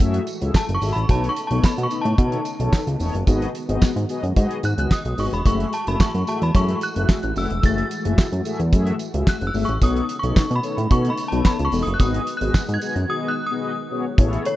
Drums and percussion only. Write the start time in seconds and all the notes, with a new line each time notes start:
0.00 kick, closed hi-hat, tambourine
0.14 closed hi-hat
0.27 closed hi-hat, tambourine
0.42 closed hi-hat
0.54 kick, snare, clap, tambourine
0.69 closed hi-hat
0.82 open hi-hat, tambourine
0.97 closed hi-hat
1.09 kick, closed hi-hat, tambourine
1.24 closed hi-hat
1.36 closed hi-hat, tambourine
1.51 closed hi-hat
1.64 kick, snare, clap, tambourine
1.78 closed hi-hat
1.91 closed hi-hat, tambourine
2.05 closed hi-hat
2.18 kick, closed hi-hat
2.32 closed hi-hat
2.45 closed hi-hat, tambourine
2.60 closed hi-hat
2.73 kick, snare, clap, tambourine
2.87 closed hi-hat
3.00 open hi-hat, tambourine
3.15 closed hi-hat
3.27 kick, closed hi-hat, tambourine
3.42 closed hi-hat
3.55 closed hi-hat, tambourine
3.69 closed hi-hat
3.82 kick, snare, clap, tambourine
3.96 closed hi-hat
4.09 closed hi-hat, tambourine
4.24 closed hi-hat
4.36 kick, closed hi-hat, tambourine
4.51 closed hi-hat
4.63 closed hi-hat, tambourine
4.78 closed hi-hat
4.91 kick, snare, clap, tambourine
5.05 closed hi-hat
5.18 open hi-hat, tambourine
5.33 closed hi-hat
5.46 kick, closed hi-hat, tambourine
5.60 closed hi-hat
5.73 closed hi-hat, tambourine
5.87 closed hi-hat
6.00 kick, snare, clap, tambourine
6.15 closed hi-hat
6.27 closed hi-hat, tambourine
6.42 closed hi-hat
6.55 kick, closed hi-hat, tambourine
6.68 closed hi-hat
6.81 closed hi-hat, tambourine
6.96 closed hi-hat
7.09 kick, snare, clap, tambourine
7.23 closed hi-hat
7.36 open hi-hat, tambourine
7.50 closed hi-hat
7.63 kick, closed hi-hat, tambourine
7.78 closed hi-hat
7.91 closed hi-hat, tambourine
8.05 closed hi-hat
8.18 kick, snare, clap, tambourine
8.33 closed hi-hat
8.45 closed hi-hat, tambourine
8.60 closed hi-hat
8.73 kick, closed hi-hat, tambourine
8.87 closed hi-hat
8.99 closed hi-hat, tambourine
9.14 closed hi-hat
9.27 kick, snare, clap, tambourine
9.41 closed hi-hat
9.54 open hi-hat, tambourine
9.69 closed hi-hat
9.82 kick, closed hi-hat, tambourine
9.96 closed hi-hat
10.09 closed hi-hat, tambourine
10.23 closed hi-hat
10.36 kick, snare, clap, tambourine
10.51 closed hi-hat
10.63 closed hi-hat, tambourine
10.78 closed hi-hat
10.91 kick, closed hi-hat
11.05 closed hi-hat
11.17 closed hi-hat, tambourine
11.32 closed hi-hat
11.45 kick, snare, clap, tambourine
11.59 closed hi-hat
11.72 open hi-hat, tambourine
11.87 closed hi-hat
12.00 kick, closed hi-hat, tambourine
12.14 closed hi-hat
12.27 closed hi-hat, tambourine
12.41 closed hi-hat
12.54 kick, snare, clap, tambourine
12.69 closed hi-hat
12.81 closed hi-hat, tambourine
12.96 closed hi-hat
14.18 kick, closed hi-hat
14.33 closed hi-hat
14.45 closed hi-hat